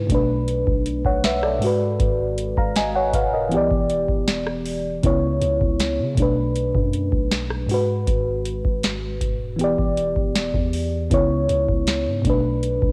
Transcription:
0.00 0.11 C#3 medium
0.00 0.12 G#3 medium
0.00 0.14 E4 medium
0.00 0.11 B4 medium
0.07 0.64 B1 loud
0.07 1.57 B2 medium
0.07 1.59 A3 medium
0.07 kick medium
0.07 closed hi-hat medium
0.12 1.60 D4 medium
0.12 0.87 B4 medium
0.48 closed hi-hat medium
0.67 1.03 B1 loud
0.67 kick loud
0.86 closed hi-hat medium
1.05 1.59 B1 loud
1.05 1.24 C#5 medium
1.05 1.23 F#5 medium
1.05 kick medium
1.24 1.43 B4 medium
1.24 1.42 E5 medium
1.24 snare loud
1.24 closed hi-hat medium
1.43 1.79 A4 medium
1.43 1.79 D5 medium
1.43 cross-stick medium
1.59 3.46 G#2 medium
1.59 3.48 G#3 medium
1.59 open hi-hat medium
1.64 3.49 F#4 medium
1.64 2.39 B4 medium
2.00 2.54 G#1 loud
2.00 kick loud
2.00 closed hi-hat medium
2.38 closed hi-hat medium
2.57 3.12 G#1 loud
2.57 2.76 F5 medium
2.57 2.75 A#5 medium
2.57 kick loud
2.76 2.94 D#5 medium
2.76 2.94 G#5 medium
2.76 snare loud
2.76 closed hi-hat medium
2.95 3.13 C#5 medium
2.95 3.13 F#5 medium
3.13 3.53 E1 loud
3.13 3.33 B4 medium
3.13 3.32 F5 medium
3.13 kick loud
3.13 closed hi-hat medium
3.34 3.70 A#4 medium
3.34 3.69 D#5 medium
3.49 3.70 B1 loud
3.49 4.99 E3 medium
3.49 5.00 B3 medium
3.49 closed hi-hat medium
3.54 5.02 G4 medium
3.54 5.03 D5 medium
3.71 4.07 E1 loud
3.71 kick loud
3.90 closed hi-hat medium
4.08 5.00 E1 loud
4.08 kick loud
4.28 snare loud
4.28 closed hi-hat medium
4.47 cross-stick medium
4.66 open hi-hat medium
5.03 5.40 C#2 loud
5.03 6.17 C#3 medium
5.03 6.18 B3 medium
5.03 6.18 E4 medium
5.03 6.19 C#5 medium
5.03 kick loud
5.03 closed hi-hat medium
5.42 5.60 C#2 loud
5.42 closed hi-hat medium
5.61 6.00 C#2 loud
5.61 kick medium
5.80 snare loud
5.80 closed hi-hat medium
5.99 6.17 C#3 medium
6.15 6.72 B1 loud
6.15 7.65 B2 medium
6.15 7.66 A3 medium
6.15 kick medium
6.15 closed hi-hat medium
6.20 7.68 D4 medium
6.20 7.69 B4 medium
6.56 closed hi-hat medium
6.75 7.11 F#2 loud
6.75 kick loud
6.93 closed hi-hat medium
7.12 7.67 B1 loud
7.12 kick medium
7.31 snare loud
7.31 closed hi-hat medium
7.50 cross-stick medium
7.66 9.54 G#2 medium
7.66 9.55 G#3 medium
7.66 open hi-hat medium
7.71 9.56 F#4 medium
7.71 9.58 B4 medium
8.07 8.62 G#1 loud
8.07 kick loud
8.07 closed hi-hat medium
8.45 closed hi-hat medium
8.65 9.19 G#1 loud
8.65 kick loud
8.83 snare loud
8.83 closed hi-hat medium
9.21 9.76 E1 loud
9.21 kick medium
9.21 closed hi-hat medium
9.56 11.07 E3 medium
9.56 11.08 B3 medium
9.56 closed hi-hat medium
9.61 11.09 G4 medium
9.61 11.10 D5 medium
9.78 10.15 E1 loud
9.78 kick medium
9.97 closed hi-hat medium
10.16 10.53 E1 loud
10.16 kick medium
10.35 snare loud
10.35 closed hi-hat medium
10.54 11.09 E2 loud
10.54 kick medium
10.73 open hi-hat medium
11.10 11.48 C#2 loud
11.10 12.25 C#3 medium
11.10 12.25 B3 medium
11.10 12.26 E4 medium
11.10 12.26 C#5 medium
11.10 kick loud
11.10 closed hi-hat medium
11.49 11.67 C#2 loud
11.49 closed hi-hat medium
11.69 12.08 C#2 loud
11.69 kick medium
11.87 snare loud
11.87 closed hi-hat medium
12.06 12.24 G#2 medium
12.22 12.80 B1 loud
12.22 12.92 B2 medium
12.22 12.92 A3 medium
12.22 kick loud
12.22 closed hi-hat medium
12.27 12.92 D4 medium
12.27 12.92 B4 medium
12.63 closed hi-hat medium
12.82 12.92 B1 loud
12.82 kick loud

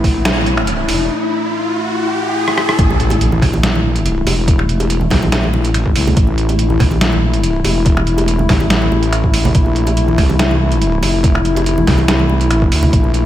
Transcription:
0.00 2.78 A3 medium
0.00 2.78 E4 medium
0.00 kick medium
0.00 riser medium
0.04 0.87 A#1 medium
0.04 open hi-hat medium
0.25 finger snap medium
0.25 snare loud
0.25 closed hi-hat medium
0.46 closed hi-hat medium
0.57 finger snap medium
0.67 closed hi-hat medium
0.89 1.10 E1 medium
0.89 open hi-hat medium
2.48 cross-stick medium
2.58 cross-stick medium
2.69 cross-stick medium
2.79 3.41 A1 loud
2.79 13.26 A3 medium
2.79 13.26 E4 medium
2.79 kick loud
2.79 closed hi-hat medium
2.79 impact medium
2.90 high bongo soft
3.00 closed hi-hat medium
3.10 closed hi-hat medium
3.10 high bongo medium
3.21 closed hi-hat medium
3.32 high conga medium
3.42 4.25 A#1 loud
3.42 finger snap soft
3.42 kick medium
3.42 open hi-hat medium
3.42 low conga medium
3.53 high bongo medium
3.53 high conga medium
3.63 snare loud
3.63 closed hi-hat medium
3.75 high conga medium
3.96 closed hi-hat medium
4.06 closed hi-hat medium
4.27 5.10 E1 medium
4.27 open hi-hat loud
4.27 high bongo medium
4.48 kick loud
4.48 closed hi-hat medium
4.59 finger snap medium
4.59 high bongo soft
4.69 closed hi-hat medium
4.80 closed hi-hat medium
4.80 high bongo medium
4.90 closed hi-hat medium
5.01 high conga medium
5.10 5.70 A#1 loud
5.10 finger snap medium
5.10 kick medium
5.10 snare medium
5.10 open hi-hat medium
5.10 low conga medium
5.22 high bongo medium
5.22 high conga medium
5.32 snare loud
5.32 closed hi-hat medium
5.44 high conga medium
5.54 high bongo medium
5.65 closed hi-hat medium
5.70 5.94 A1 loud
5.74 finger snap medium
5.74 closed hi-hat medium
5.86 kick medium
5.96 6.15 C2 loud
5.96 open hi-hat medium
6.07 low conga loud
6.17 6.79 A1 loud
6.17 kick loud
6.17 closed hi-hat medium
6.27 high bongo soft
6.38 closed hi-hat medium
6.49 closed hi-hat medium
6.49 high bongo medium
6.59 closed hi-hat medium
6.70 high conga medium
6.80 7.63 A#1 loud
6.80 finger snap medium
6.80 kick medium
6.80 open hi-hat medium
6.80 low conga medium
6.91 high bongo medium
6.91 high conga medium
7.01 snare loud
7.01 closed hi-hat medium
7.13 high conga medium
7.34 closed hi-hat medium
7.43 closed hi-hat medium
7.65 8.48 E1 loud
7.65 open hi-hat medium
7.65 high bongo medium
7.86 kick loud
7.86 closed hi-hat medium
7.97 finger snap medium
7.97 high bongo soft
8.07 closed hi-hat medium
8.18 closed hi-hat medium
8.18 high bongo medium
8.28 closed hi-hat medium
8.39 high conga medium
8.49 8.90 A1 loud
8.49 finger snap medium
8.49 kick medium
8.49 snare medium
8.49 open hi-hat medium
8.49 low conga medium
8.60 high bongo medium
8.60 high conga medium
8.70 snare loud
8.70 closed hi-hat medium
8.82 high conga medium
8.91 9.53 A1 medium
8.91 high bongo medium
9.03 closed hi-hat medium
9.13 finger snap medium
9.13 closed hi-hat medium
9.24 kick medium
9.34 open hi-hat medium
9.45 low conga loud
9.55 10.17 A#1 loud
9.55 kick loud
9.55 closed hi-hat medium
9.66 high bongo soft
9.76 closed hi-hat medium
9.87 closed hi-hat medium
9.87 high bongo medium
9.97 closed hi-hat medium
10.08 high conga medium
10.18 11.01 C2 loud
10.18 finger snap medium
10.18 kick medium
10.18 open hi-hat medium
10.18 low conga medium
10.30 high bongo soft
10.30 high conga medium
10.39 snare loud
10.39 closed hi-hat medium
10.51 high conga medium
10.72 closed hi-hat medium
10.82 closed hi-hat medium
11.03 11.86 F1 medium
11.03 open hi-hat medium
11.03 high bongo medium
11.24 kick loud
11.24 closed hi-hat medium
11.35 finger snap medium
11.35 high bongo soft
11.45 closed hi-hat medium
11.56 closed hi-hat medium
11.56 high bongo medium
11.66 closed hi-hat medium
11.78 high conga medium
11.87 12.70 C2 medium
11.87 finger snap medium
11.87 kick medium
11.87 snare medium
11.87 open hi-hat medium
11.87 low conga medium
11.98 high bongo medium
11.98 high conga medium
12.08 snare loud
12.08 closed hi-hat medium
12.20 high conga medium
12.29 high bongo medium
12.41 closed hi-hat medium
12.51 finger snap medium
12.51 closed hi-hat medium
12.62 kick medium
12.72 12.91 D2 medium
12.72 open hi-hat medium
12.83 low conga medium
12.93 13.26 A#1 loud
12.93 kick loud
12.93 closed hi-hat medium
13.04 high bongo soft
13.14 closed hi-hat medium

